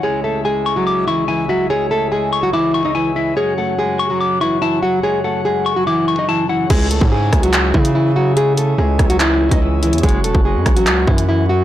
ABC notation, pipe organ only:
X:1
M:4/4
L:1/8
Q:1/4=144
K:C#m
V:1 name="Pipe organ"
[C,,G,E]8- | [C,,G,E]8 | [F,,F,F]8- | [F,,F,F]8 |
[C,EG]8- | [C,EG]8 | F8 |]
V:2 name="Pipe organ" clef=bass
C,8- | C,8- | C,8- | C,8 |
C8- | C8 | F,8 |]